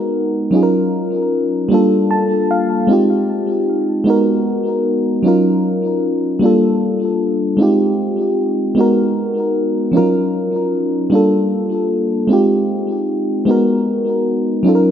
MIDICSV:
0, 0, Header, 1, 2, 480
1, 0, Start_track
1, 0, Tempo, 784314
1, 321, Time_signature, 6, 3, 24, 8
1, 9126, End_track
2, 0, Start_track
2, 0, Title_t, "FM electric piano"
2, 0, Program_c, 0, 5
2, 0, Control_c, 0, 64, 127
2, 0, Note_on_c, 0, 56, 64
2, 0, Note_on_c, 0, 59, 59
2, 0, Note_on_c, 0, 63, 55
2, 0, Note_on_c, 0, 66, 60
2, 0, Note_on_c, 0, 70, 71
2, 311, Note_on_c, 0, 54, 58
2, 318, Note_off_c, 0, 56, 0
2, 320, Note_on_c, 0, 61, 57
2, 321, Note_off_c, 0, 63, 0
2, 322, Note_off_c, 0, 59, 0
2, 327, Control_c, 0, 64, 0
2, 328, Note_on_c, 0, 63, 57
2, 331, Note_off_c, 0, 66, 0
2, 335, Note_off_c, 0, 70, 0
2, 337, Note_on_c, 0, 65, 59
2, 344, Note_on_c, 0, 68, 52
2, 372, Note_off_c, 0, 68, 0
2, 385, Note_on_c, 0, 70, 70
2, 442, Control_c, 0, 64, 127
2, 1032, Note_on_c, 0, 55, 69
2, 1036, Note_off_c, 0, 54, 0
2, 1040, Note_off_c, 0, 61, 0
2, 1041, Note_on_c, 0, 58, 63
2, 1044, Note_off_c, 0, 63, 0
2, 1048, Control_c, 0, 64, 0
2, 1049, Note_off_c, 0, 65, 0
2, 1050, Note_on_c, 0, 62, 64
2, 1058, Note_on_c, 0, 65, 62
2, 1066, Note_on_c, 0, 69, 73
2, 1073, Note_off_c, 0, 70, 0
2, 1163, Control_c, 0, 64, 127
2, 1289, Note_on_c, 0, 81, 61
2, 1508, Note_off_c, 0, 81, 0
2, 1534, Note_on_c, 0, 77, 61
2, 1751, Note_off_c, 0, 77, 0
2, 1756, Note_off_c, 0, 55, 0
2, 1757, Note_on_c, 0, 56, 61
2, 1761, Note_off_c, 0, 58, 0
2, 1764, Note_on_c, 0, 60, 60
2, 1765, Note_off_c, 0, 62, 0
2, 1769, Note_off_c, 0, 65, 0
2, 1770, Control_c, 0, 64, 0
2, 1773, Note_off_c, 0, 69, 0
2, 1773, Note_on_c, 0, 63, 59
2, 1782, Note_on_c, 0, 65, 59
2, 1792, Note_on_c, 0, 67, 64
2, 1878, Control_c, 0, 64, 127
2, 2466, Note_off_c, 0, 56, 0
2, 2474, Note_on_c, 0, 56, 66
2, 2482, Note_off_c, 0, 60, 0
2, 2483, Note_on_c, 0, 59, 64
2, 2484, Note_off_c, 0, 63, 0
2, 2489, Control_c, 0, 64, 0
2, 2491, Note_off_c, 0, 65, 0
2, 2491, Note_on_c, 0, 63, 64
2, 2496, Note_off_c, 0, 67, 0
2, 2500, Note_on_c, 0, 66, 65
2, 2508, Note_on_c, 0, 70, 76
2, 2605, Control_c, 0, 64, 127
2, 3197, Note_off_c, 0, 56, 0
2, 3198, Note_on_c, 0, 54, 59
2, 3202, Note_off_c, 0, 59, 0
2, 3206, Note_off_c, 0, 63, 0
2, 3207, Note_on_c, 0, 61, 56
2, 3208, Control_c, 0, 64, 0
2, 3210, Note_off_c, 0, 66, 0
2, 3214, Note_off_c, 0, 70, 0
2, 3215, Note_on_c, 0, 63, 58
2, 3223, Note_on_c, 0, 65, 59
2, 3231, Note_on_c, 0, 70, 64
2, 3330, Control_c, 0, 64, 127
2, 3913, Note_on_c, 0, 55, 65
2, 3919, Note_off_c, 0, 54, 0
2, 3922, Note_on_c, 0, 58, 60
2, 3924, Note_off_c, 0, 61, 0
2, 3928, Note_off_c, 0, 63, 0
2, 3929, Control_c, 0, 64, 0
2, 3932, Note_off_c, 0, 65, 0
2, 3932, Note_on_c, 0, 62, 62
2, 3936, Note_off_c, 0, 70, 0
2, 3940, Note_on_c, 0, 65, 58
2, 3950, Note_on_c, 0, 69, 68
2, 4042, Control_c, 0, 64, 127
2, 4632, Note_on_c, 0, 56, 59
2, 4637, Note_off_c, 0, 55, 0
2, 4641, Note_off_c, 0, 58, 0
2, 4642, Note_on_c, 0, 60, 58
2, 4646, Note_off_c, 0, 62, 0
2, 4648, Control_c, 0, 64, 0
2, 4650, Note_off_c, 0, 65, 0
2, 4650, Note_on_c, 0, 63, 57
2, 4655, Note_off_c, 0, 69, 0
2, 4658, Note_on_c, 0, 65, 57
2, 4667, Note_on_c, 0, 67, 68
2, 4747, Control_c, 0, 64, 127
2, 5347, Note_off_c, 0, 56, 0
2, 5354, Note_on_c, 0, 56, 65
2, 5361, Note_off_c, 0, 60, 0
2, 5362, Note_on_c, 0, 59, 56
2, 5365, Note_off_c, 0, 63, 0
2, 5369, Note_off_c, 0, 65, 0
2, 5369, Control_c, 0, 64, 0
2, 5372, Note_on_c, 0, 63, 60
2, 5374, Note_off_c, 0, 67, 0
2, 5380, Note_on_c, 0, 66, 62
2, 5389, Note_on_c, 0, 70, 74
2, 5475, Control_c, 0, 64, 127
2, 6068, Note_on_c, 0, 53, 48
2, 6077, Note_off_c, 0, 56, 0
2, 6077, Note_on_c, 0, 61, 55
2, 6079, Note_off_c, 0, 63, 0
2, 6081, Note_off_c, 0, 59, 0
2, 6087, Control_c, 0, 64, 0
2, 6087, Note_on_c, 0, 63, 54
2, 6090, Note_off_c, 0, 66, 0
2, 6093, Note_off_c, 0, 70, 0
2, 6093, Note_on_c, 0, 65, 55
2, 6101, Note_on_c, 0, 70, 73
2, 6108, Note_on_c, 0, 54, 60
2, 6114, Note_off_c, 0, 53, 0
2, 6212, Control_c, 0, 64, 127
2, 6792, Note_on_c, 0, 55, 67
2, 6797, Note_on_c, 0, 58, 61
2, 6799, Note_off_c, 0, 61, 0
2, 6804, Note_off_c, 0, 63, 0
2, 6807, Note_off_c, 0, 65, 0
2, 6807, Note_on_c, 0, 62, 63
2, 6809, Control_c, 0, 64, 0
2, 6811, Note_off_c, 0, 70, 0
2, 6814, Note_off_c, 0, 54, 0
2, 6815, Note_on_c, 0, 65, 63
2, 6824, Note_on_c, 0, 69, 72
2, 6906, Control_c, 0, 64, 127
2, 7512, Note_on_c, 0, 56, 62
2, 7516, Note_off_c, 0, 55, 0
2, 7519, Note_off_c, 0, 58, 0
2, 7521, Note_on_c, 0, 60, 58
2, 7523, Note_off_c, 0, 62, 0
2, 7527, Control_c, 0, 64, 0
2, 7528, Note_off_c, 0, 65, 0
2, 7529, Note_on_c, 0, 63, 55
2, 7532, Note_off_c, 0, 69, 0
2, 7538, Note_on_c, 0, 65, 56
2, 7546, Note_on_c, 0, 67, 69
2, 7632, Control_c, 0, 64, 127
2, 8226, Note_off_c, 0, 56, 0
2, 8233, Note_on_c, 0, 56, 67
2, 8240, Note_on_c, 0, 59, 66
2, 8241, Note_off_c, 0, 60, 0
2, 8242, Note_off_c, 0, 63, 0
2, 8249, Note_off_c, 0, 65, 0
2, 8249, Control_c, 0, 64, 0
2, 8249, Note_on_c, 0, 63, 57
2, 8253, Note_off_c, 0, 67, 0
2, 8258, Note_on_c, 0, 66, 60
2, 8266, Note_on_c, 0, 70, 73
2, 8340, Control_c, 0, 64, 127
2, 8953, Note_on_c, 0, 54, 65
2, 8957, Note_off_c, 0, 56, 0
2, 8960, Note_off_c, 0, 59, 0
2, 8962, Note_on_c, 0, 61, 59
2, 8965, Note_off_c, 0, 63, 0
2, 8967, Control_c, 0, 64, 0
2, 8969, Note_off_c, 0, 66, 0
2, 8971, Note_on_c, 0, 63, 59
2, 8973, Note_off_c, 0, 70, 0
2, 8981, Note_on_c, 0, 65, 60
2, 8989, Note_on_c, 0, 69, 58
2, 9014, Note_off_c, 0, 69, 0
2, 9028, Note_on_c, 0, 70, 66
2, 9084, Control_c, 0, 64, 127
2, 9126, Note_off_c, 0, 54, 0
2, 9126, Note_off_c, 0, 61, 0
2, 9126, Note_off_c, 0, 63, 0
2, 9126, Note_off_c, 0, 65, 0
2, 9126, Note_off_c, 0, 70, 0
2, 9126, End_track
0, 0, End_of_file